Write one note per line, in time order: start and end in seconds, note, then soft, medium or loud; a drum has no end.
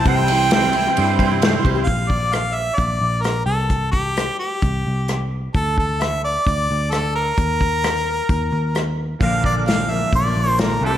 0.05 0.87 C2 medium
0.05 0.28 C3 medium
0.05 0.51 E3 loud
0.05 0.28 G3 medium
0.05 0.29 C4 medium
0.05 0.29 E4 medium
0.05 0.30 G4 medium
0.05 0.28 C5 loud
0.05 1.39 G5 loud
0.05 kick loud
0.05 ride loud
0.28 0.52 G3 medium
0.28 0.53 C4 medium
0.28 0.53 C5 medium
0.28 ride medium
0.32 0.53 E4 medium
0.32 0.53 G4 medium
0.51 0.75 C3 medium
0.51 0.97 E3 medium
0.51 0.74 G3 medium
0.51 0.72 C5 loud
0.51 snare loud
0.51 ride loud
0.55 0.75 C4 medium
0.55 0.75 E4 medium
0.55 0.76 G4 medium
0.73 0.86 G3 medium
0.73 0.86 C4 medium
0.73 0.86 E4 medium
0.73 0.85 G4 medium
0.73 0.98 C5 medium
0.73 ride medium
0.86 1.20 C4 soft
0.86 1.20 E4 medium
0.86 1.20 G4 medium
0.96 1.58 G2 loud
0.96 1.20 G3 medium
0.96 1.20 C4 medium
0.96 1.18 E4 medium
0.96 1.18 C5 medium
0.96 ride loud
1.19 1.66 C3 medium
1.19 1.66 E3 medium
1.19 1.31 G3 medium
1.19 1.31 C4 medium
1.19 1.30 E4 medium
1.19 1.30 G4 medium
1.19 1.44 C5 medium
1.19 kick medium
1.19 ride medium
1.31 1.41 C4 soft
1.31 1.41 E4 medium
1.31 1.42 G4 medium
1.42 1.64 C3 medium
1.42 1.64 G3 medium
1.42 1.64 C4 medium
1.42 1.65 E4 medium
1.42 1.65 G4 loud
1.42 1.64 C5 medium
1.42 snare loud
1.42 ride loud
1.65 1.85 C2 loud
1.65 1.76 G3 medium
1.65 1.76 C4 medium
1.65 1.75 E4 medium
1.65 1.74 G4 medium
1.65 1.86 C5 medium
1.65 kick medium
1.65 ride medium
1.75 1.88 C4 medium
1.75 1.87 E4 medium
1.75 1.87 G4 medium
1.84 2.12 F5 medium
1.84 kick medium
1.84 closed hi-hat soft
1.88 2.69 A#1 medium
2.10 2.35 D5 medium
2.10 kick medium
2.33 2.56 F5 medium
2.33 cross-stick loud
2.33 closed hi-hat medium
2.54 2.76 E5 medium
2.75 2.99 A#1 medium
2.75 3.23 D5 medium
2.75 kick medium
2.75 closed hi-hat medium
3.01 3.42 A#1 medium
3.22 3.45 A#4 medium
3.22 cross-stick loud
3.22 closed hi-hat medium
3.46 4.29 C2 medium
3.46 3.89 A4 medium
3.70 kick medium
3.70 closed hi-hat medium
3.91 4.35 G4 medium
3.91 kick medium
4.17 cross-stick loud
4.17 closed hi-hat medium
4.39 5.27 G4 medium
4.62 4.83 C2 medium
4.62 kick medium
4.62 closed hi-hat medium
4.87 5.48 C2 medium
5.08 cross-stick medium
5.08 closed hi-hat medium
5.54 6.36 D2 medium
5.54 5.76 A4 medium
5.54 kick loud
5.54 closed hi-hat medium
5.78 6.03 A4 medium
5.78 kick medium
6.01 6.24 E5 medium
6.01 cross-stick loud
6.01 closed hi-hat medium
6.24 6.45 D5 medium
6.47 6.67 D2 medium
6.47 6.93 D5 medium
6.47 kick medium
6.47 closed hi-hat soft
6.71 7.31 D2 medium
6.91 7.14 A4 medium
6.91 cross-stick medium
6.91 closed hi-hat medium
7.15 8.94 A#4 medium
7.38 8.20 D#2 medium
7.38 kick loud
7.38 closed hi-hat medium
7.61 kick medium
7.83 cross-stick loud
7.83 closed hi-hat medium
8.29 8.50 D#2 medium
8.29 kick loud
8.29 closed hi-hat medium
8.53 9.14 D#2 medium
8.75 cross-stick loud
8.75 closed hi-hat medium
9.21 10.03 A#1 medium
9.21 9.65 A#2 medium
9.21 9.65 D3 medium
9.21 9.65 F3 medium
9.21 9.66 A#3 medium
9.21 9.67 D4 medium
9.21 9.67 A#4 medium
9.21 9.43 F5 loud
9.21 kick loud
9.21 closed hi-hat medium
9.44 9.55 D5 medium
9.44 kick medium
9.66 9.89 A#2 medium
9.66 9.89 D3 medium
9.66 9.87 F3 medium
9.66 9.89 A#3 medium
9.66 9.88 D4 medium
9.66 9.90 A#4 medium
9.66 9.91 F5 medium
9.66 snare loud
9.66 closed hi-hat medium
9.89 10.23 F3 medium
9.89 10.24 A#3 medium
9.89 10.24 D4 medium
9.89 10.24 A#4 medium
9.89 10.13 E5 medium
10.13 10.33 A#1 medium
10.13 10.49 D5 loud
10.13 kick medium
10.13 closed hi-hat medium
10.25 10.34 F3 soft
10.25 10.35 A#3 soft
10.25 10.36 D4 medium
10.25 10.36 A#4 medium
10.35 10.76 A#1 medium
10.35 10.47 F3 medium
10.35 10.46 A#3 soft
10.35 10.45 D4 medium
10.35 10.44 A#4 medium
10.45 10.58 F3 soft
10.45 10.58 A#3 soft
10.45 10.58 D4 soft
10.45 10.57 A#4 soft
10.49 10.61 C5 loud
10.58 10.81 A#2 medium
10.58 10.82 D3 medium
10.58 10.82 F3 medium
10.58 10.82 A#3 medium
10.58 10.82 D4 medium
10.58 10.82 A#4 medium
10.58 10.83 A#4 medium
10.58 snare loud
10.58 closed hi-hat medium
10.81 10.98 C2 medium
10.81 10.98 C3 medium
10.81 10.98 E3 medium
10.81 10.94 G3 medium
10.81 10.94 D4 medium
10.85 10.94 E4 medium
10.85 10.93 G4 medium
10.85 10.98 A4 medium
10.94 10.98 G4 medium